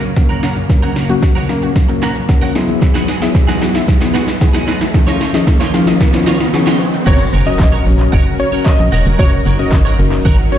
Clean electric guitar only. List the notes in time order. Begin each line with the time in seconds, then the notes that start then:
Already playing: C#4
0.03 muted clean electric guitar stroke
0.16 muted clean electric guitar stroke
0.29 C#4 F#4 A#4
0.43 C#4 F#4 A#4
0.56 muted clean electric guitar stroke
0.69 muted clean electric guitar stroke
0.82 C#4 F#4 A#4
0.96 C#4 F#4 A#4
1.09 muted clean electric guitar stroke
1.22 muted clean electric guitar stroke
1.35 C#4 F#4 A#4
1.49 muted clean electric guitar stroke
1.62 muted clean electric guitar stroke
1.89 muted clean electric guitar stroke
2.02 C#4 F#4 A#4
2.15 muted clean electric guitar stroke
2.28 muted clean electric guitar stroke
2.41 C#4 F#4 A#4
2.55 muted clean electric guitar stroke
2.68 muted clean electric guitar stroke
2.81 muted clean electric guitar stroke
2.94 B3 F#4 G#4
3.08 B3 F#4 G#4
3.21 muted clean electric guitar stroke
3.34 muted clean electric guitar stroke
3.47 B3 F#4 G#4
3.61 muted clean electric guitar stroke
3.74 muted clean electric guitar stroke
4.01 muted clean electric guitar stroke
4.14 B3 F#4 G#4
4.27 muted clean electric guitar stroke
4.41 muted clean electric guitar stroke
4.53 B3 F#4 G#4
4.67 B3 F#4 G#4
4.80 muted clean electric guitar stroke
4.94 muted clean electric guitar stroke
5.07 D#4 F4 C#5
5.20 D#4 F4 C#5
5.34 muted clean electric guitar stroke
5.47 muted clean electric guitar stroke
5.60 D#4 F4 C#5
5.73 muted clean electric guitar stroke
5.87 muted clean electric guitar stroke
6.13 muted clean electric guitar stroke
6.26 D#4 F4 C#5
6.40 muted clean electric guitar stroke
6.53 muted clean electric guitar stroke
6.66 D#4 F4 C#5
6.80 muted clean electric guitar stroke
6.93 muted clean electric guitar stroke
7.06 F#4 A#4 C#5
7.20 muted clean electric guitar stroke
7.33 F#4 A#4 C#5
7.46 F#4 A#4 C#5
7.59 muted clean electric guitar stroke
7.72 F#4 A#4 C#5
7.86 muted clean electric guitar stroke
7.99 muted clean electric guitar stroke
8.12 F#4 A#4 C#5
8.26 muted clean electric guitar stroke
8.39 muted clean electric guitar stroke
8.52 F#4 A#4 C#5
8.66 muted clean electric guitar stroke
8.79 muted clean electric guitar stroke
8.92 F#4 A#4 C#5
9.05 F#4 A#4 C#5
9.19 F#4 A#4 C#5
9.32 muted clean electric guitar stroke
9.45 F#4 A#4 C#5
9.59 F#4 A#4 C#5
9.72 muted clean electric guitar stroke
9.85 F#4 A#4 C#5
9.98 muted clean electric guitar stroke
10.12 muted clean electric guitar stroke
10.25 F#4 A#4 C#5
10.38 muted clean electric guitar stroke
10.52 muted clean electric guitar stroke